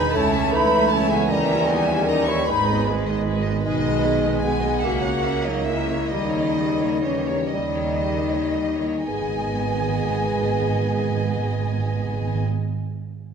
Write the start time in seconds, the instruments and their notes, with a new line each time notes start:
Already playing: trombone section D#3 G#3, bassoon G#3, viola section D#4 B4, clarinet D#4, french horn section B4, violin section G#5 B5, flute section B5
0.14 double bass section C#2, cello section C#2, trombone section E3 A3, bassoon A3, clarinet C#4, viola section E4 A4, french horn section A4, violin section C#5 A5, flute section A5
0.34 viola section C#4 C#5, violin section E5
0.52 clarinet D#4, viola section E4 A4, french horn section B4, violin section C#5 B5, flute section B5
0.70 violin section E5
0.75 viola section C#4 C#5
0.88 french horn section A4, violin section C#5 A5
0.93 clarinet C#4, viola section E4 A4, flute section A5
1.08 clarinet B3, french horn section G#4, violin section E5 G#5, flute section G#5
1.14 viola section C#4 C#5
1.27 double bass section D#2, trombone section G3, bassoon G3, clarinet C#4, french horn section A#4, violin section D#5 A#5
1.31 cello section D#2, viola section D#4 G4, flute section A#5
1.47 violin section E5
1.52 viola section C#4 E4
1.65 french horn section G#4, violin section D#5 G#5
1.70 clarinet B3, viola section D#4 G4, flute section G#5
1.87 viola section C#4 E4, violin section E5
2.03 french horn section A#4, violin section D#5
2.07 clarinet C#4, viola section D#4 G4, violin section A#5, flute section A#5
2.25 viola section C#4 E4, clarinet E4, french horn section C#5, violin section E5 C#6, flute section C#6
2.46 double bass section G#1, cello section G#2, trombone section D#3 G#3, viola section G#3 G#4, bassoon G#3, clarinet D#4, violin section B4 B5, french horn section B4, flute section B5
2.65 viola section B3 B4, violin section D#5
2.84 violin section B4
2.89 viola section G#3 G#4
3.07 viola section B3 B4, violin section D#5
3.26 viola section G#3 G#4, violin section B4
3.44 viola section B3 B4, violin section D#5
3.63 double bass section B1, cello section B2, clarinet G#3, bassoon G#3, viola section G#3 G#4, french horn section D#4, violin section B4 D#5, flute section D#5
3.80 violin section D#5
3.87 viola section B3 B4
3.99 violin section B4
4.06 viola section G#3 G#4
4.21 viola section B3 B4, violin section D#5
4.42 viola section G#3 G#4, clarinet B3, french horn section G#4, violin section B4 G#5, flute section G#5
4.62 viola section B3 B4, violin section D#5
4.80 double bass section C#2, trombone section C#3 A#3, cello section C#3, clarinet A#3, bassoon A#3, violin section E5 F#5, flute section F#5
4.84 viola section C#4 A#4, french horn section F#4
5.01 violin section C#5
5.05 viola section A#3 C#5
5.22 viola section C#4, violin section E5
5.26 viola section A#4
5.43 clarinet F#3, french horn section D#4, violin section C#5 D#5, flute section D#5
5.48 viola section A#3 C#5
5.65 clarinet G#3, viola section C#4 A#4, violin section E5, flute section E5
5.69 french horn section E4
5.88 viola section A#3 C#5, violin section C#5
6.08 double bass section D#2, cello section D#3, clarinet G3, trombone section G3, viola section G3 G4, violin section D#5, flute section D#5
6.13 french horn section D#4
6.30 violin section C#5
6.35 viola section A#3 E4
6.52 violin section D#5
6.56 viola section G3 G4
6.77 viola section A#3 E4, violin section C#5
6.99 violin section C#5 D#5
7.03 clarinet E3, viola section G3 G4, french horn section C#4, flute section C#5
7.26 viola section A#3 E4, violin section C#5
7.48 violin section D#5
7.52 double bass section D#2, cello section D#3, bassoon G3, clarinet G3, viola section G3 G4, french horn section D#4, flute section D#5
7.74 viola section A#3 E4, violin section C#5
7.99 violin section D#5
8.04 viola section G3 G4
8.26 viola section A#3 E4, violin section C#5
8.54 viola section G3 G4, violin section D#5
8.80 viola section A#3 E4, violin section C#5
9.04 double bass section G#1, timpani G#2, cello section G#2, trombone section D#3 B3, viola section B3 G#4, bassoon B3, clarinet G#4, violin section D#5 G#5, flute section G#5
9.08 french horn section G#4
9.13 timpani G#2
9.20 timpani G#2
9.27 timpani G#2
9.33 timpani G#2
9.40 timpani G#2
9.47 timpani G#2
9.54 timpani G#2
9.60 timpani G#2
9.67 timpani G#2
9.74 timpani G#2
9.80 timpani G#2
9.88 timpani G#2
9.96 timpani G#2
10.02 timpani G#2
10.09 timpani G#2
10.16 timpani G#2
10.23 timpani G#2
10.30 timpani G#2
10.36 timpani G#2
10.43 timpani G#2
10.50 timpani G#2
10.56 timpani G#2
10.62 timpani G#2
10.69 timpani G#2
10.75 timpani G#2
10.82 timpani G#2
10.90 timpani G#2
10.96 timpani G#2
11.03 timpani G#2
11.10 timpani G#2
11.17 timpani G#2
11.24 timpani G#2
11.30 timpani G#2
11.37 timpani G#2
11.44 timpani G#2
11.51 timpani G#2
11.58 timpani G#2
11.65 timpani G#2
11.71 timpani G#2
11.78 timpani G#2
11.85 timpani G#2
11.92 timpani G#2
11.99 timpani G#2
12.06 timpani G#2
12.13 timpani G#2
12.20 timpani G#2
12.27 timpani G#2
12.33 timpani G#2
12.40 timpani G#2